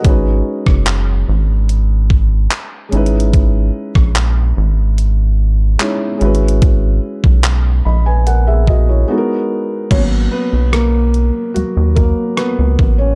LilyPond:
<<
  \new Staff \with { instrumentName = "Felt piano" } { \time 4/4 \key gis \minor \tempo 4 = 73 << { dis''16 r2. r8. | r1 | r4. <dis'' b''>16 <b' gis''>16 <ais' fis''>16 <gis' e''>16 <fis' dis''>16 <e' cis''>8 r8. | <fis ais b cis' cis''>8 <b b'>8 <ais ais'>4 <fis fis'>8 <ais ais'>8 <b b'>8. <cis' cis''>16 | } \\ { <gis cis' dis' fis' b'>2.~ <gis cis' dis' fis' b'>8 <gis cis' dis' e' b'>8~ | <gis cis' dis' e' b'>2. <gis cis' dis' e' cis''>8 <gis cis' e' fis' b'>8~ | <gis cis' e' fis' b'>2. <gis b dis' fis' a' ais'>4 | r1 | } >> }
  \new Staff \with { instrumentName = "Analog synth bass" } { \clef bass \time 4/4 \key gis \minor gis,,8 r16 fis,,8. gis,,4. r8 gis,,8~ | gis,,8 r16 ais,,8. gis,,4. r8 gis,,8~ | gis,,8 r16 b,,8. ais,,4. r4 | gis,,8 r16 b,,4 r16 dis,16 dis,8 r8 cis,16 a,,8 | }
  \new DrumStaff \with { instrumentName = "Drums" } \drummode { \time 4/4 <hh bd>8. <bd ss>16 <hc hh>4 hh8 bd8 \tuplet 3/2 { <hc hh>16 r16 r16 hh16 hh16 hh16 } | <hh bd>8. <bd ss>16 <hc hh>4 hh4 \tuplet 3/2 { <hc hh>16 r16 r16 hh16 hh16 hh16 } | <hh bd>8. bd16 <hc hh>4 hh8 bd8 r4 | <cymc hh bd>4 <hh ss>8 hh8 hh8 <hh bd>8 <hh ss>8 bd8 | }
>>